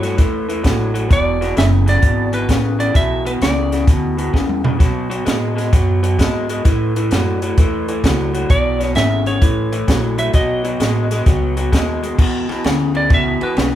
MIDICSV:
0, 0, Header, 1, 6, 480
1, 0, Start_track
1, 0, Tempo, 461538
1, 1153, Time_signature, 4, 2, 24, 8
1, 14302, End_track
2, 0, Start_track
2, 0, Title_t, "Electric slide guitar"
2, 0, Program_c, 0, 29
2, 0, Note_on_c, 0, 73, 73
2, 170, Note_off_c, 0, 73, 0
2, 1172, Note_on_c, 0, 74, 103
2, 1610, Note_off_c, 0, 74, 0
2, 1645, Note_on_c, 0, 76, 95
2, 1730, Note_off_c, 0, 76, 0
2, 1966, Note_on_c, 0, 74, 90
2, 2406, Note_off_c, 0, 74, 0
2, 2433, Note_on_c, 0, 71, 83
2, 2912, Note_on_c, 0, 74, 90
2, 2927, Note_off_c, 0, 71, 0
2, 3062, Note_off_c, 0, 74, 0
2, 3080, Note_on_c, 0, 76, 93
2, 3374, Note_off_c, 0, 76, 0
2, 3398, Note_on_c, 0, 71, 78
2, 3450, Note_off_c, 0, 71, 0
2, 3561, Note_on_c, 0, 74, 71
2, 4004, Note_off_c, 0, 74, 0
2, 8844, Note_on_c, 0, 74, 101
2, 9288, Note_off_c, 0, 74, 0
2, 9316, Note_on_c, 0, 76, 96
2, 9614, Note_off_c, 0, 76, 0
2, 9642, Note_on_c, 0, 73, 87
2, 10596, Note_on_c, 0, 76, 91
2, 10628, Note_off_c, 0, 73, 0
2, 10757, Note_off_c, 0, 76, 0
2, 10761, Note_on_c, 0, 75, 88
2, 12158, Note_off_c, 0, 75, 0
2, 13485, Note_on_c, 0, 74, 85
2, 13635, Note_off_c, 0, 74, 0
2, 13667, Note_on_c, 0, 76, 83
2, 13961, Note_off_c, 0, 76, 0
2, 13970, Note_on_c, 0, 71, 80
2, 14272, Note_off_c, 0, 71, 0
2, 14302, End_track
3, 0, Start_track
3, 0, Title_t, "Clean electric guitar"
3, 0, Program_c, 1, 27
3, 27, Note_on_c, 1, 45, 69
3, 28, Note_on_c, 1, 54, 73
3, 171, Note_off_c, 1, 45, 0
3, 175, Note_off_c, 1, 54, 0
3, 183, Note_on_c, 1, 45, 76
3, 190, Note_on_c, 1, 52, 83
3, 475, Note_off_c, 1, 45, 0
3, 479, Note_off_c, 1, 52, 0
3, 506, Note_on_c, 1, 45, 66
3, 513, Note_on_c, 1, 52, 76
3, 647, Note_off_c, 1, 45, 0
3, 658, Note_off_c, 1, 52, 0
3, 660, Note_on_c, 1, 45, 80
3, 665, Note_on_c, 1, 54, 81
3, 954, Note_off_c, 1, 45, 0
3, 956, Note_off_c, 1, 54, 0
3, 978, Note_on_c, 1, 45, 66
3, 981, Note_on_c, 1, 54, 77
3, 1130, Note_off_c, 1, 45, 0
3, 1131, Note_off_c, 1, 54, 0
3, 1132, Note_on_c, 1, 40, 81
3, 1137, Note_on_c, 1, 47, 81
3, 1430, Note_off_c, 1, 40, 0
3, 1432, Note_off_c, 1, 47, 0
3, 1467, Note_on_c, 1, 40, 76
3, 1469, Note_on_c, 1, 47, 80
3, 1614, Note_off_c, 1, 40, 0
3, 1616, Note_off_c, 1, 47, 0
3, 1626, Note_on_c, 1, 40, 77
3, 1633, Note_on_c, 1, 49, 87
3, 1917, Note_off_c, 1, 40, 0
3, 1920, Note_off_c, 1, 49, 0
3, 1938, Note_on_c, 1, 40, 73
3, 1946, Note_on_c, 1, 49, 66
3, 2087, Note_off_c, 1, 40, 0
3, 2094, Note_off_c, 1, 49, 0
3, 2100, Note_on_c, 1, 40, 74
3, 2104, Note_on_c, 1, 47, 74
3, 2394, Note_off_c, 1, 40, 0
3, 2396, Note_off_c, 1, 47, 0
3, 2420, Note_on_c, 1, 40, 70
3, 2423, Note_on_c, 1, 47, 82
3, 2571, Note_off_c, 1, 40, 0
3, 2572, Note_off_c, 1, 47, 0
3, 2583, Note_on_c, 1, 40, 72
3, 2589, Note_on_c, 1, 49, 84
3, 2875, Note_off_c, 1, 40, 0
3, 2878, Note_off_c, 1, 49, 0
3, 2902, Note_on_c, 1, 40, 69
3, 2903, Note_on_c, 1, 49, 71
3, 3039, Note_off_c, 1, 40, 0
3, 3052, Note_off_c, 1, 49, 0
3, 3052, Note_on_c, 1, 40, 78
3, 3062, Note_on_c, 1, 47, 72
3, 3350, Note_off_c, 1, 40, 0
3, 3355, Note_off_c, 1, 47, 0
3, 3384, Note_on_c, 1, 40, 70
3, 3387, Note_on_c, 1, 47, 75
3, 3533, Note_off_c, 1, 40, 0
3, 3535, Note_off_c, 1, 47, 0
3, 3546, Note_on_c, 1, 40, 84
3, 3558, Note_on_c, 1, 49, 84
3, 3837, Note_off_c, 1, 40, 0
3, 3843, Note_off_c, 1, 49, 0
3, 3868, Note_on_c, 1, 40, 73
3, 3876, Note_on_c, 1, 49, 83
3, 4015, Note_off_c, 1, 40, 0
3, 4019, Note_off_c, 1, 49, 0
3, 4034, Note_on_c, 1, 40, 69
3, 4043, Note_on_c, 1, 47, 78
3, 4321, Note_off_c, 1, 40, 0
3, 4326, Note_off_c, 1, 47, 0
3, 4340, Note_on_c, 1, 40, 66
3, 4350, Note_on_c, 1, 47, 81
3, 4491, Note_off_c, 1, 40, 0
3, 4496, Note_off_c, 1, 47, 0
3, 4504, Note_on_c, 1, 40, 77
3, 4515, Note_on_c, 1, 49, 80
3, 4796, Note_off_c, 1, 40, 0
3, 4801, Note_off_c, 1, 49, 0
3, 4827, Note_on_c, 1, 40, 71
3, 4831, Note_on_c, 1, 49, 75
3, 4975, Note_off_c, 1, 40, 0
3, 4977, Note_off_c, 1, 49, 0
3, 4981, Note_on_c, 1, 47, 72
3, 4988, Note_on_c, 1, 54, 92
3, 5275, Note_off_c, 1, 47, 0
3, 5278, Note_off_c, 1, 54, 0
3, 5303, Note_on_c, 1, 47, 74
3, 5307, Note_on_c, 1, 54, 88
3, 5453, Note_off_c, 1, 47, 0
3, 5455, Note_off_c, 1, 54, 0
3, 5466, Note_on_c, 1, 47, 77
3, 5470, Note_on_c, 1, 56, 83
3, 5757, Note_off_c, 1, 47, 0
3, 5760, Note_off_c, 1, 56, 0
3, 5778, Note_on_c, 1, 47, 70
3, 5788, Note_on_c, 1, 56, 73
3, 5931, Note_off_c, 1, 47, 0
3, 5936, Note_off_c, 1, 56, 0
3, 5953, Note_on_c, 1, 47, 76
3, 5956, Note_on_c, 1, 54, 79
3, 6241, Note_off_c, 1, 47, 0
3, 6243, Note_off_c, 1, 54, 0
3, 6269, Note_on_c, 1, 47, 73
3, 6270, Note_on_c, 1, 54, 76
3, 6417, Note_off_c, 1, 47, 0
3, 6417, Note_off_c, 1, 54, 0
3, 6432, Note_on_c, 1, 47, 76
3, 6436, Note_on_c, 1, 56, 85
3, 6721, Note_off_c, 1, 47, 0
3, 6723, Note_off_c, 1, 56, 0
3, 6754, Note_on_c, 1, 47, 70
3, 6760, Note_on_c, 1, 56, 77
3, 6900, Note_off_c, 1, 47, 0
3, 6902, Note_off_c, 1, 56, 0
3, 6913, Note_on_c, 1, 45, 75
3, 6916, Note_on_c, 1, 52, 80
3, 7202, Note_off_c, 1, 45, 0
3, 7203, Note_off_c, 1, 52, 0
3, 7244, Note_on_c, 1, 45, 68
3, 7247, Note_on_c, 1, 52, 79
3, 7385, Note_off_c, 1, 45, 0
3, 7386, Note_off_c, 1, 52, 0
3, 7401, Note_on_c, 1, 45, 83
3, 7406, Note_on_c, 1, 54, 88
3, 7686, Note_off_c, 1, 45, 0
3, 7689, Note_off_c, 1, 54, 0
3, 7721, Note_on_c, 1, 45, 68
3, 7725, Note_on_c, 1, 54, 74
3, 7863, Note_off_c, 1, 45, 0
3, 7865, Note_off_c, 1, 54, 0
3, 7886, Note_on_c, 1, 45, 75
3, 7896, Note_on_c, 1, 52, 91
3, 8169, Note_off_c, 1, 45, 0
3, 8174, Note_off_c, 1, 52, 0
3, 8201, Note_on_c, 1, 45, 72
3, 8203, Note_on_c, 1, 52, 73
3, 8344, Note_off_c, 1, 45, 0
3, 8345, Note_off_c, 1, 52, 0
3, 8358, Note_on_c, 1, 45, 78
3, 8362, Note_on_c, 1, 54, 78
3, 8646, Note_off_c, 1, 45, 0
3, 8647, Note_off_c, 1, 54, 0
3, 8670, Note_on_c, 1, 45, 61
3, 8679, Note_on_c, 1, 54, 84
3, 8819, Note_off_c, 1, 45, 0
3, 8823, Note_off_c, 1, 54, 0
3, 8835, Note_on_c, 1, 40, 82
3, 8839, Note_on_c, 1, 47, 87
3, 9124, Note_off_c, 1, 40, 0
3, 9126, Note_off_c, 1, 47, 0
3, 9143, Note_on_c, 1, 40, 76
3, 9152, Note_on_c, 1, 47, 86
3, 9295, Note_off_c, 1, 40, 0
3, 9300, Note_off_c, 1, 47, 0
3, 9315, Note_on_c, 1, 40, 88
3, 9322, Note_on_c, 1, 49, 84
3, 9604, Note_off_c, 1, 40, 0
3, 9608, Note_off_c, 1, 49, 0
3, 9631, Note_on_c, 1, 40, 75
3, 9636, Note_on_c, 1, 49, 80
3, 9779, Note_off_c, 1, 40, 0
3, 9782, Note_off_c, 1, 49, 0
3, 9790, Note_on_c, 1, 45, 78
3, 9799, Note_on_c, 1, 52, 86
3, 10082, Note_off_c, 1, 45, 0
3, 10086, Note_off_c, 1, 52, 0
3, 10113, Note_on_c, 1, 52, 83
3, 10115, Note_on_c, 1, 45, 78
3, 10258, Note_off_c, 1, 45, 0
3, 10260, Note_off_c, 1, 52, 0
3, 10271, Note_on_c, 1, 45, 74
3, 10275, Note_on_c, 1, 54, 81
3, 10562, Note_off_c, 1, 45, 0
3, 10564, Note_off_c, 1, 54, 0
3, 10585, Note_on_c, 1, 45, 69
3, 10589, Note_on_c, 1, 54, 68
3, 10736, Note_off_c, 1, 45, 0
3, 10738, Note_off_c, 1, 54, 0
3, 10750, Note_on_c, 1, 47, 72
3, 10750, Note_on_c, 1, 54, 90
3, 11041, Note_off_c, 1, 47, 0
3, 11042, Note_off_c, 1, 54, 0
3, 11066, Note_on_c, 1, 47, 78
3, 11073, Note_on_c, 1, 54, 84
3, 11217, Note_off_c, 1, 47, 0
3, 11220, Note_off_c, 1, 54, 0
3, 11230, Note_on_c, 1, 47, 77
3, 11233, Note_on_c, 1, 56, 88
3, 11522, Note_off_c, 1, 47, 0
3, 11523, Note_off_c, 1, 56, 0
3, 11553, Note_on_c, 1, 47, 69
3, 11561, Note_on_c, 1, 56, 75
3, 11700, Note_off_c, 1, 47, 0
3, 11704, Note_off_c, 1, 56, 0
3, 11718, Note_on_c, 1, 47, 78
3, 11721, Note_on_c, 1, 54, 82
3, 12005, Note_off_c, 1, 47, 0
3, 12007, Note_off_c, 1, 54, 0
3, 12032, Note_on_c, 1, 47, 61
3, 12037, Note_on_c, 1, 54, 77
3, 12179, Note_off_c, 1, 47, 0
3, 12182, Note_off_c, 1, 54, 0
3, 12191, Note_on_c, 1, 47, 71
3, 12195, Note_on_c, 1, 56, 90
3, 12482, Note_off_c, 1, 47, 0
3, 12483, Note_off_c, 1, 56, 0
3, 12509, Note_on_c, 1, 47, 65
3, 12512, Note_on_c, 1, 56, 67
3, 12658, Note_off_c, 1, 47, 0
3, 12659, Note_off_c, 1, 56, 0
3, 12665, Note_on_c, 1, 40, 82
3, 12672, Note_on_c, 1, 47, 92
3, 12958, Note_off_c, 1, 40, 0
3, 12962, Note_off_c, 1, 47, 0
3, 12991, Note_on_c, 1, 40, 75
3, 12993, Note_on_c, 1, 47, 86
3, 13138, Note_off_c, 1, 40, 0
3, 13139, Note_off_c, 1, 47, 0
3, 13152, Note_on_c, 1, 40, 76
3, 13154, Note_on_c, 1, 49, 93
3, 13441, Note_off_c, 1, 40, 0
3, 13442, Note_off_c, 1, 49, 0
3, 13463, Note_on_c, 1, 40, 74
3, 13469, Note_on_c, 1, 49, 79
3, 13610, Note_off_c, 1, 40, 0
3, 13617, Note_off_c, 1, 49, 0
3, 13622, Note_on_c, 1, 40, 82
3, 13627, Note_on_c, 1, 47, 91
3, 13915, Note_off_c, 1, 40, 0
3, 13918, Note_off_c, 1, 47, 0
3, 13943, Note_on_c, 1, 40, 75
3, 13950, Note_on_c, 1, 47, 81
3, 14093, Note_off_c, 1, 40, 0
3, 14096, Note_off_c, 1, 47, 0
3, 14109, Note_on_c, 1, 40, 83
3, 14115, Note_on_c, 1, 49, 98
3, 14302, Note_off_c, 1, 40, 0
3, 14302, Note_off_c, 1, 49, 0
3, 14302, End_track
4, 0, Start_track
4, 0, Title_t, "Upright bass"
4, 0, Program_c, 2, 32
4, 0, Note_on_c, 2, 43, 84
4, 176, Note_off_c, 2, 43, 0
4, 191, Note_on_c, 2, 40, 77
4, 658, Note_off_c, 2, 40, 0
4, 668, Note_on_c, 2, 33, 81
4, 1136, Note_off_c, 2, 33, 0
4, 1150, Note_on_c, 2, 28, 78
4, 1617, Note_off_c, 2, 28, 0
4, 1634, Note_on_c, 2, 30, 88
4, 2099, Note_off_c, 2, 30, 0
4, 2107, Note_on_c, 2, 32, 82
4, 2576, Note_off_c, 2, 32, 0
4, 2586, Note_on_c, 2, 33, 84
4, 3055, Note_off_c, 2, 33, 0
4, 3073, Note_on_c, 2, 35, 78
4, 3539, Note_off_c, 2, 35, 0
4, 3549, Note_on_c, 2, 37, 90
4, 4017, Note_off_c, 2, 37, 0
4, 4031, Note_on_c, 2, 38, 82
4, 4498, Note_off_c, 2, 38, 0
4, 4511, Note_on_c, 2, 40, 81
4, 4978, Note_off_c, 2, 40, 0
4, 4994, Note_on_c, 2, 47, 77
4, 5460, Note_off_c, 2, 47, 0
4, 5473, Note_on_c, 2, 45, 80
4, 5940, Note_off_c, 2, 45, 0
4, 5960, Note_on_c, 2, 42, 84
4, 6423, Note_off_c, 2, 42, 0
4, 6440, Note_on_c, 2, 44, 80
4, 6904, Note_off_c, 2, 44, 0
4, 6919, Note_on_c, 2, 45, 79
4, 7384, Note_off_c, 2, 45, 0
4, 7401, Note_on_c, 2, 42, 83
4, 7865, Note_off_c, 2, 42, 0
4, 7882, Note_on_c, 2, 40, 82
4, 8345, Note_off_c, 2, 40, 0
4, 8361, Note_on_c, 2, 37, 85
4, 8825, Note_off_c, 2, 37, 0
4, 8840, Note_on_c, 2, 35, 82
4, 9305, Note_off_c, 2, 35, 0
4, 9311, Note_on_c, 2, 32, 92
4, 9780, Note_off_c, 2, 32, 0
4, 9796, Note_on_c, 2, 33, 84
4, 10263, Note_off_c, 2, 33, 0
4, 10277, Note_on_c, 2, 34, 82
4, 10744, Note_off_c, 2, 34, 0
4, 10751, Note_on_c, 2, 35, 81
4, 11220, Note_off_c, 2, 35, 0
4, 11232, Note_on_c, 2, 33, 86
4, 11701, Note_off_c, 2, 33, 0
4, 11715, Note_on_c, 2, 37, 84
4, 12182, Note_off_c, 2, 37, 0
4, 12194, Note_on_c, 2, 39, 85
4, 12661, Note_off_c, 2, 39, 0
4, 12676, Note_on_c, 2, 40, 87
4, 12973, Note_off_c, 2, 40, 0
4, 13152, Note_on_c, 2, 38, 86
4, 13619, Note_off_c, 2, 38, 0
4, 13629, Note_on_c, 2, 37, 87
4, 13928, Note_off_c, 2, 37, 0
4, 14111, Note_on_c, 2, 35, 85
4, 14302, Note_off_c, 2, 35, 0
4, 14302, End_track
5, 0, Start_track
5, 0, Title_t, "Muted upright bass strokes"
5, 12985, Note_on_c, 9, 29, 43
5, 13089, Note_off_c, 9, 29, 0
5, 13953, Note_on_c, 9, 29, 42
5, 14057, Note_off_c, 9, 29, 0
5, 14302, End_track
6, 0, Start_track
6, 0, Title_t, "Drums"
6, 34, Note_on_c, 9, 42, 57
6, 51, Note_on_c, 9, 38, 30
6, 138, Note_off_c, 9, 42, 0
6, 155, Note_off_c, 9, 38, 0
6, 189, Note_on_c, 9, 42, 75
6, 193, Note_on_c, 9, 36, 101
6, 206, Note_on_c, 9, 38, 31
6, 293, Note_off_c, 9, 42, 0
6, 297, Note_off_c, 9, 36, 0
6, 310, Note_off_c, 9, 38, 0
6, 515, Note_on_c, 9, 42, 56
6, 619, Note_off_c, 9, 42, 0
6, 669, Note_on_c, 9, 42, 74
6, 671, Note_on_c, 9, 36, 78
6, 685, Note_on_c, 9, 38, 101
6, 773, Note_off_c, 9, 42, 0
6, 775, Note_off_c, 9, 36, 0
6, 789, Note_off_c, 9, 38, 0
6, 992, Note_on_c, 9, 42, 56
6, 1096, Note_off_c, 9, 42, 0
6, 1150, Note_on_c, 9, 36, 107
6, 1150, Note_on_c, 9, 42, 75
6, 1167, Note_on_c, 9, 38, 30
6, 1254, Note_off_c, 9, 36, 0
6, 1254, Note_off_c, 9, 42, 0
6, 1271, Note_off_c, 9, 38, 0
6, 1477, Note_on_c, 9, 42, 54
6, 1494, Note_on_c, 9, 38, 33
6, 1581, Note_off_c, 9, 42, 0
6, 1598, Note_off_c, 9, 38, 0
6, 1631, Note_on_c, 9, 42, 75
6, 1648, Note_on_c, 9, 38, 101
6, 1735, Note_off_c, 9, 42, 0
6, 1752, Note_off_c, 9, 38, 0
6, 1951, Note_on_c, 9, 42, 60
6, 1967, Note_on_c, 9, 38, 30
6, 2055, Note_off_c, 9, 42, 0
6, 2071, Note_off_c, 9, 38, 0
6, 2105, Note_on_c, 9, 42, 83
6, 2108, Note_on_c, 9, 36, 101
6, 2209, Note_off_c, 9, 42, 0
6, 2212, Note_off_c, 9, 36, 0
6, 2422, Note_on_c, 9, 42, 63
6, 2526, Note_off_c, 9, 42, 0
6, 2588, Note_on_c, 9, 36, 74
6, 2588, Note_on_c, 9, 42, 78
6, 2604, Note_on_c, 9, 38, 99
6, 2692, Note_off_c, 9, 36, 0
6, 2692, Note_off_c, 9, 42, 0
6, 2708, Note_off_c, 9, 38, 0
6, 2911, Note_on_c, 9, 42, 61
6, 3015, Note_off_c, 9, 42, 0
6, 3069, Note_on_c, 9, 36, 100
6, 3070, Note_on_c, 9, 42, 86
6, 3086, Note_on_c, 9, 38, 32
6, 3173, Note_off_c, 9, 36, 0
6, 3174, Note_off_c, 9, 42, 0
6, 3190, Note_off_c, 9, 38, 0
6, 3395, Note_on_c, 9, 42, 64
6, 3499, Note_off_c, 9, 42, 0
6, 3552, Note_on_c, 9, 42, 74
6, 3568, Note_on_c, 9, 38, 104
6, 3656, Note_off_c, 9, 42, 0
6, 3672, Note_off_c, 9, 38, 0
6, 3872, Note_on_c, 9, 42, 57
6, 3889, Note_on_c, 9, 38, 31
6, 3976, Note_off_c, 9, 42, 0
6, 3993, Note_off_c, 9, 38, 0
6, 4030, Note_on_c, 9, 36, 106
6, 4031, Note_on_c, 9, 42, 80
6, 4048, Note_on_c, 9, 38, 31
6, 4134, Note_off_c, 9, 36, 0
6, 4135, Note_off_c, 9, 42, 0
6, 4152, Note_off_c, 9, 38, 0
6, 4352, Note_on_c, 9, 42, 58
6, 4456, Note_off_c, 9, 42, 0
6, 4510, Note_on_c, 9, 36, 76
6, 4530, Note_on_c, 9, 38, 62
6, 4614, Note_off_c, 9, 36, 0
6, 4634, Note_off_c, 9, 38, 0
6, 4673, Note_on_c, 9, 47, 57
6, 4777, Note_off_c, 9, 47, 0
6, 4831, Note_on_c, 9, 43, 92
6, 4935, Note_off_c, 9, 43, 0
6, 4993, Note_on_c, 9, 36, 105
6, 4997, Note_on_c, 9, 42, 76
6, 5014, Note_on_c, 9, 38, 32
6, 5097, Note_off_c, 9, 36, 0
6, 5101, Note_off_c, 9, 42, 0
6, 5118, Note_off_c, 9, 38, 0
6, 5317, Note_on_c, 9, 42, 59
6, 5421, Note_off_c, 9, 42, 0
6, 5474, Note_on_c, 9, 42, 70
6, 5491, Note_on_c, 9, 38, 99
6, 5578, Note_off_c, 9, 42, 0
6, 5595, Note_off_c, 9, 38, 0
6, 5805, Note_on_c, 9, 42, 56
6, 5822, Note_on_c, 9, 38, 29
6, 5909, Note_off_c, 9, 42, 0
6, 5926, Note_off_c, 9, 38, 0
6, 5957, Note_on_c, 9, 36, 104
6, 5957, Note_on_c, 9, 42, 79
6, 5974, Note_on_c, 9, 38, 32
6, 6061, Note_off_c, 9, 36, 0
6, 6061, Note_off_c, 9, 42, 0
6, 6078, Note_off_c, 9, 38, 0
6, 6277, Note_on_c, 9, 42, 62
6, 6381, Note_off_c, 9, 42, 0
6, 6437, Note_on_c, 9, 36, 81
6, 6439, Note_on_c, 9, 42, 81
6, 6456, Note_on_c, 9, 38, 113
6, 6541, Note_off_c, 9, 36, 0
6, 6543, Note_off_c, 9, 42, 0
6, 6560, Note_off_c, 9, 38, 0
6, 6753, Note_on_c, 9, 42, 60
6, 6857, Note_off_c, 9, 42, 0
6, 6917, Note_on_c, 9, 42, 84
6, 6919, Note_on_c, 9, 36, 108
6, 6934, Note_on_c, 9, 38, 31
6, 7021, Note_off_c, 9, 42, 0
6, 7023, Note_off_c, 9, 36, 0
6, 7038, Note_off_c, 9, 38, 0
6, 7240, Note_on_c, 9, 42, 66
6, 7344, Note_off_c, 9, 42, 0
6, 7393, Note_on_c, 9, 42, 86
6, 7410, Note_on_c, 9, 38, 100
6, 7497, Note_off_c, 9, 42, 0
6, 7514, Note_off_c, 9, 38, 0
6, 7717, Note_on_c, 9, 42, 60
6, 7821, Note_off_c, 9, 42, 0
6, 7879, Note_on_c, 9, 42, 88
6, 7880, Note_on_c, 9, 36, 110
6, 7896, Note_on_c, 9, 38, 30
6, 7983, Note_off_c, 9, 42, 0
6, 7984, Note_off_c, 9, 36, 0
6, 8000, Note_off_c, 9, 38, 0
6, 8200, Note_on_c, 9, 42, 56
6, 8304, Note_off_c, 9, 42, 0
6, 8358, Note_on_c, 9, 36, 78
6, 8361, Note_on_c, 9, 42, 83
6, 8377, Note_on_c, 9, 38, 115
6, 8462, Note_off_c, 9, 36, 0
6, 8465, Note_off_c, 9, 42, 0
6, 8481, Note_off_c, 9, 38, 0
6, 8679, Note_on_c, 9, 42, 55
6, 8783, Note_off_c, 9, 42, 0
6, 8839, Note_on_c, 9, 36, 110
6, 8839, Note_on_c, 9, 42, 81
6, 8943, Note_off_c, 9, 36, 0
6, 8943, Note_off_c, 9, 42, 0
6, 9158, Note_on_c, 9, 42, 55
6, 9175, Note_on_c, 9, 38, 32
6, 9262, Note_off_c, 9, 42, 0
6, 9279, Note_off_c, 9, 38, 0
6, 9309, Note_on_c, 9, 42, 72
6, 9326, Note_on_c, 9, 38, 98
6, 9413, Note_off_c, 9, 42, 0
6, 9430, Note_off_c, 9, 38, 0
6, 9634, Note_on_c, 9, 42, 50
6, 9738, Note_off_c, 9, 42, 0
6, 9793, Note_on_c, 9, 42, 77
6, 9795, Note_on_c, 9, 36, 104
6, 9897, Note_off_c, 9, 42, 0
6, 9899, Note_off_c, 9, 36, 0
6, 10114, Note_on_c, 9, 42, 56
6, 10218, Note_off_c, 9, 42, 0
6, 10276, Note_on_c, 9, 36, 81
6, 10276, Note_on_c, 9, 42, 82
6, 10292, Note_on_c, 9, 38, 113
6, 10380, Note_off_c, 9, 36, 0
6, 10380, Note_off_c, 9, 42, 0
6, 10396, Note_off_c, 9, 38, 0
6, 10591, Note_on_c, 9, 42, 61
6, 10695, Note_off_c, 9, 42, 0
6, 10748, Note_on_c, 9, 42, 79
6, 10753, Note_on_c, 9, 36, 102
6, 10765, Note_on_c, 9, 38, 30
6, 10852, Note_off_c, 9, 42, 0
6, 10857, Note_off_c, 9, 36, 0
6, 10869, Note_off_c, 9, 38, 0
6, 11072, Note_on_c, 9, 42, 64
6, 11176, Note_off_c, 9, 42, 0
6, 11234, Note_on_c, 9, 42, 86
6, 11250, Note_on_c, 9, 38, 97
6, 11338, Note_off_c, 9, 42, 0
6, 11354, Note_off_c, 9, 38, 0
6, 11554, Note_on_c, 9, 42, 59
6, 11570, Note_on_c, 9, 38, 28
6, 11658, Note_off_c, 9, 42, 0
6, 11674, Note_off_c, 9, 38, 0
6, 11712, Note_on_c, 9, 42, 84
6, 11714, Note_on_c, 9, 36, 106
6, 11729, Note_on_c, 9, 38, 32
6, 11816, Note_off_c, 9, 42, 0
6, 11818, Note_off_c, 9, 36, 0
6, 11833, Note_off_c, 9, 38, 0
6, 12032, Note_on_c, 9, 42, 67
6, 12136, Note_off_c, 9, 42, 0
6, 12195, Note_on_c, 9, 36, 73
6, 12198, Note_on_c, 9, 42, 83
6, 12214, Note_on_c, 9, 38, 100
6, 12299, Note_off_c, 9, 36, 0
6, 12302, Note_off_c, 9, 42, 0
6, 12318, Note_off_c, 9, 38, 0
6, 12515, Note_on_c, 9, 42, 60
6, 12619, Note_off_c, 9, 42, 0
6, 12673, Note_on_c, 9, 36, 110
6, 12674, Note_on_c, 9, 49, 100
6, 12777, Note_off_c, 9, 36, 0
6, 12778, Note_off_c, 9, 49, 0
6, 12990, Note_on_c, 9, 51, 61
6, 13006, Note_on_c, 9, 38, 33
6, 13094, Note_off_c, 9, 51, 0
6, 13110, Note_off_c, 9, 38, 0
6, 13148, Note_on_c, 9, 51, 78
6, 13165, Note_on_c, 9, 38, 109
6, 13252, Note_off_c, 9, 51, 0
6, 13269, Note_off_c, 9, 38, 0
6, 13465, Note_on_c, 9, 51, 58
6, 13569, Note_off_c, 9, 51, 0
6, 13625, Note_on_c, 9, 51, 83
6, 13628, Note_on_c, 9, 36, 108
6, 13641, Note_on_c, 9, 38, 31
6, 13729, Note_off_c, 9, 51, 0
6, 13732, Note_off_c, 9, 36, 0
6, 13745, Note_off_c, 9, 38, 0
6, 13947, Note_on_c, 9, 51, 62
6, 14051, Note_off_c, 9, 51, 0
6, 14108, Note_on_c, 9, 51, 82
6, 14125, Note_on_c, 9, 38, 114
6, 14212, Note_off_c, 9, 51, 0
6, 14229, Note_off_c, 9, 38, 0
6, 14302, End_track
0, 0, End_of_file